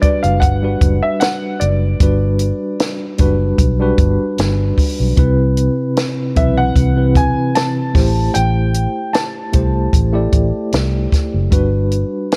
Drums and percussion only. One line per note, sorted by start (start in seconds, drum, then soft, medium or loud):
0.02 kick medium
0.02 closed hi-hat medium
0.23 closed hi-hat soft
0.42 kick medium
0.42 closed hi-hat medium
0.81 kick medium
0.81 closed hi-hat medium
1.21 snare loud
1.21 closed hi-hat medium
1.61 closed hi-hat medium
2.00 kick medium
2.00 closed hi-hat medium
2.39 closed hi-hat medium
2.80 snare loud
2.80 closed hi-hat medium
3.18 kick medium
3.18 closed hi-hat medium
3.58 kick medium
3.58 closed hi-hat medium
3.98 kick medium
3.98 closed hi-hat medium
4.38 snare medium
4.38 closed hi-hat medium
4.78 kick medium
4.78 open hi-hat medium
5.17 kick medium
5.17 closed hi-hat medium
5.57 closed hi-hat medium
5.97 snare loud
5.97 closed hi-hat medium
6.36 kick medium
6.36 closed hi-hat medium
6.76 kick medium
6.76 closed hi-hat medium
7.15 kick medium
7.15 closed hi-hat medium
7.55 snare medium
7.55 closed hi-hat medium
7.95 kick medium
7.95 snare soft
7.95 open hi-hat medium
8.35 closed hi-hat medium
8.74 closed hi-hat medium
9.14 snare loud
9.14 closed hi-hat medium
9.53 kick medium
9.53 closed hi-hat medium
9.93 kick medium
9.93 closed hi-hat medium
10.33 kick medium
10.33 closed hi-hat medium
10.72 snare loud
10.72 closed hi-hat medium
11.12 kick medium
11.12 snare soft
11.12 closed hi-hat medium
11.52 kick medium
11.52 closed hi-hat medium
11.91 closed hi-hat medium
12.32 snare loud
12.32 closed hi-hat medium